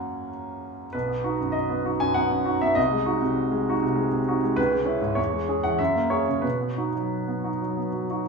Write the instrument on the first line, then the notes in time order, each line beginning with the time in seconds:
grand piano
Already playing: F#2 A#3 C#4 F#4 F#5 G#5
0.93 B1 B4
1.08 B3
1.24 D#4 F#4
1.40 F#2
1.52 D#5
1.70 B3
1.85 D#4 F#4
2.00 F#2 G#5
2.14 B3 F#5
2.31 F#2
2.45 D#4 F#4
2.61 B3 E5
2.75 C2 D#5
2.92 G#3
3.06 D#4 F#4
3.22 C3
3.51 G#3
3.69 D#4 F#4
3.82 C3
3.96 G#3
4.12 C3
4.28 D#4 F#4
4.43 G#3
4.56 C#2 B4
4.71 G#3
4.85 C#4 E4
5.01 G#2
5.15 E2 C#5
5.33 G#3
5.49 C#4 G#4
5.63 E3 F#5
5.79 F#2 E5
5.95 A#3
6.10 C#4 G#4 C#5
6.28 C#3
6.42 B2 B4
6.61 B3
6.77 D#4 F#4
6.95 F#3
7.28 B3
7.44 D#4 F#4
7.62 F#3
7.77 B3
7.93 F#3
8.10 D#4 F#4